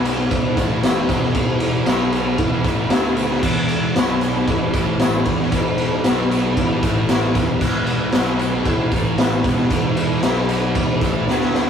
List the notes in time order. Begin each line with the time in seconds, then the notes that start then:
Already playing: B1 B2 F#3 B3
0.05 ride, tambourine
0.31 E1 E2 B2 E3, kick, ride, tambourine
0.57 A1 A2 E3 A3, kick, ride, tambourine
0.83 snare, ride, tambourine
1.09 E1 E2 B2 E3, kick, ride, tambourine
1.22 snare
1.34 E1 E2 B2 E3, kick, ride, tambourine
1.60 ride
1.64 tambourine
1.86 B1 B2 F#3 B3, snare, ride, tambourine
2.12 ride, tambourine
2.38 E1 E2 B2 E3, kick, ride
2.42 tambourine
2.64 A1 A2 E3 A3, kick, ride, tambourine
2.90 D2 D3 A3 D4, snare, ride, tambourine
3.17 ride, tambourine
3.30 snare
3.42 E1 E2 B2 E3, kick, crash, tambourine
3.69 ride, tambourine
3.96 B1 B2 F#3 B3, snare, ride, tambourine
4.21 ride, tambourine
4.47 E1 E2 B2 E3, kick, ride, tambourine
4.73 A1 A2 E3 A3, kick, ride, tambourine
4.99 snare, ride, tambourine
5.25 E2 B2 E3, kick, ride
5.39 snare
5.52 E1 E2 B2 E3, kick, ride, tambourine
5.78 ride, tambourine
6.04 B1 B2 F#3 B3, snare, ride, tambourine
6.31 ride, tambourine
6.56 E1 E2 B2 E3, kick, ride, tambourine
6.83 A1 A2 E3 A3, kick, ride, tambourine
7.09 snare, ride, tambourine
7.35 E1 E2 B2 E3, kick, ride, tambourine
7.61 E1 E2 B2 E3, kick, tambourine, crash
7.86 ride, tambourine
8.12 B1 B2 F#3 B3, snare, ride, tambourine
8.39 ride, tambourine
8.65 E1 E2 B2 E3, kick, ride, tambourine
8.92 A1 A2 E3 A3, kick, ride
8.96 tambourine
9.18 snare, ride, tambourine
9.44 E1 E2 B2 E3, kick, ride, tambourine
9.58 snare
9.70 E1 E2 B2 E3, kick, ride, tambourine
9.97 ride, tambourine
10.23 B1 B2 F#3 B3, snare, ride, tambourine
10.36 snare
10.49 ride, tambourine
10.75 E1 E2 B2 E3, kick, ride, tambourine
11.01 A1 A2 E3 A3, kick, ride, tambourine
11.27 D2 D3 A3 D4, snare
11.31 tambourine
11.40 snare
11.54 snare, tambourine
11.66 snare